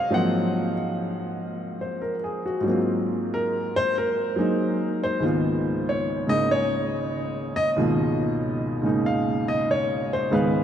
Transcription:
Already playing: C3 F5
0.10 G#2 F3 F#3 A#3 C4 F#5
1.81 C5
2.02 A#4
2.24 G#4
2.46 F#4
2.61 G#2 F#3
2.66 A#3 C4
2.72 F4
3.34 A#4
3.76 C5
3.98 A#4
4.36 F#3 G#3 A#3 D#4
5.04 C5
5.20 C#2 G#2 D#3 A#3
5.24 B3 F4
5.89 C#5
6.27 G#2 C#3 G#3 A#3 D#4 D#5
6.51 C#5
7.56 D#5
7.76 C#2 G#2 B2 D#3 A#3 F4
8.82 G#2 C#3 G#3 A#3 D#4
9.06 F5
9.48 D#5
9.71 C#5
10.13 C5
10.31 C#2 G#2 D#3 G#3 B3 B4 F5

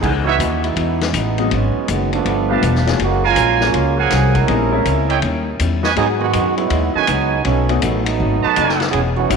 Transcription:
0.00 C#2 C#3 E3 B3 D#4 G#4, kick, crash
0.05 B3 D#4
0.24 E3 B3 D#4 F#4 B4 C#5 E5
0.39 D#2 C#3 E3 B3 D#4, hi-hat pedal, ride
0.63 G#3 B3 D#4 E4, ride
0.76 E2 C#3 E3 B3 D#4, ride
1.01 E3 G#3 B3 C#4, snare, ride
1.13 A1 C#3 E3 G#3 B3 D#4, hi-hat pedal, ride
1.38 F#3 G#3 A#3 B3 D#4, ride
1.50 G#1 G#2 F#3 G#3 B3 C#4 D#4, ride
1.76 muted upright bass stroke
1.87 F#1 G#2 D#3 F#3 G#3 B3 D#4, hi-hat pedal, ride
2.13 F3 A3 B3 D4, ride
2.25 G1 G3 B3 F4 A4, ride
2.49 G3 A3 B3 D4 F4 G4 B4 F5 A5
2.62 E1 G3 B3 F4 A4, hi-hat pedal, ride
2.75 snare
2.86 F#3 G#3 A#3 C#4 F4, snare, ride
2.98 F#1 F#3 G#3 A#3 F4 F#4 G#4, ride
3.02 C#3
3.24 G#3 A#3 C#4 F4 A#4 F5 G#5
3.36 A#1 F#3 A#3 F4 G#4, hi-hat pedal, ride
3.60 F#3 G#3 A#3 C#4 F4, snare
3.73 C#2 F#3 A#3 F4 G#4, ride
3.98 F3 A#3 C#4 G#4 A#4 F5 F#5 G#5
4.10 C2 F#3 A#3 F4 G#4, snare, hi-hat pedal, ride
4.35 G#3 C#4 E4 A#4, kick, ride
4.47 A#1 A#2 G3 G#3 A3 B3 C4 C#4 D#4 E4, ride
4.72 G#3 A#3 C4 C#4 E4
4.85 C#2 A#2 G#3 C#4 E4, hi-hat pedal, ride
5.09 E4 C#5 D#5 G5, ride
5.21 D#2 D#3 G3 C#4 E4, ride
5.59 E2 D#3 G3 C#4 E4, hi-hat pedal, ride
5.83 F#4 B4 D#5 G#5, snare
5.95 G#2 F#3 G#3 B3 D#4 F#4 G#4 D#5, ride
6.19 D#3 G#3 B3 F#4
6.33 F#2 G#2 F#3 B3 D#4, hi-hat pedal, ride
6.57 F#3 G#3 B3 E4, ride
6.69 D#2 G#2 F#3 B3 D#4, ride
6.94 D#3 F#3 A3 C#4 F#4 B4 D#5 G#5, muted upright bass stroke
7.07 C#2 G#2 F#3 G#3 B3 D#4, hi-hat pedal, ride
7.44 B1 B2 F#3 A3 B3 C#4, ride
7.48 D#4
7.69 A3 B3 C#4 D#4 F#4, ride
7.81 A1 B2 D#3 F#3 A3 B3 D#4, hi-hat pedal, ride
8.04 F#3 A3 B3 D#4, ride
8.19 G#1 B2 F#3 A3 D#4
8.42 F#4 B4 D#5 A5, muted upright bass stroke
8.56 F#1 B2 F#3 A3 D#4, hi-hat pedal, ride
8.69 snare
8.80 snare, ride
8.90 E1 E3 B3 C#4 G#4, ride
8.95 G#4
9.17 E3 B3 C#4 F#4
9.29 G#1 E3 G#3 B3 C#4 E4 F#4 G#4, hi-hat pedal, ride

